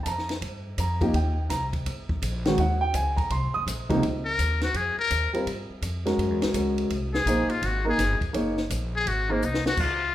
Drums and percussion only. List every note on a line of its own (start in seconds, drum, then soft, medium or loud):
0.06 kick soft
0.06 hi-hat pedal medium
0.06 ride medium
0.18 snare soft
0.29 snare soft
0.29 ride soft
0.42 kick soft
0.42 ride medium
0.78 kick soft
0.78 hi-hat pedal medium
0.78 ride medium
1.01 kick medium
1.01 ride soft
1.14 kick soft
1.14 ride medium
1.50 kick soft
1.50 snare soft
1.50 hi-hat pedal medium
1.50 ride medium
1.73 kick medium
1.73 ride soft
1.86 kick soft
1.86 ride medium
2.09 kick medium
2.22 kick soft
2.22 hi-hat pedal medium
2.22 ride medium
2.45 snare medium
2.45 ride soft
2.58 kick soft
2.58 ride medium
2.94 kick soft
2.94 hi-hat pedal medium
2.94 ride medium
3.18 kick medium
3.18 ride soft
3.30 kick soft
3.30 ride medium
3.67 kick soft
3.67 hi-hat pedal medium
3.67 ride medium
3.90 kick medium
3.90 ride soft
4.03 kick soft
4.03 ride medium
4.39 kick soft
4.39 hi-hat pedal medium
4.39 ride medium
4.61 snare medium
4.61 ride soft
4.74 kick soft
4.74 ride medium
5.11 kick soft
5.11 hi-hat pedal medium
5.11 ride medium
5.34 ride soft
5.47 kick soft
5.47 ride medium
5.82 kick soft
5.82 hi-hat pedal medium
5.82 ride medium
6.06 snare soft
6.06 ride soft
6.18 kick soft
6.18 ride medium
6.42 snare medium
6.42 ride medium
6.54 kick soft
6.54 hi-hat pedal medium
6.54 ride medium
6.78 ride soft
6.90 kick soft
6.90 ride medium
7.14 snare medium
7.26 kick soft
7.26 hi-hat pedal medium
7.26 ride medium
7.50 ride soft
7.62 kick soft
7.62 ride medium
7.98 kick soft
7.98 snare soft
7.98 hi-hat pedal medium
7.98 ride medium
8.21 kick medium
8.21 ride soft
8.34 kick soft
8.34 ride medium
8.57 snare soft
8.70 kick soft
8.70 hi-hat pedal medium
8.70 ride medium
9.06 kick soft
9.06 ride medium
9.42 hi-hat pedal medium
9.54 snare medium
9.66 snare medium
9.77 kick medium
9.77 crash medium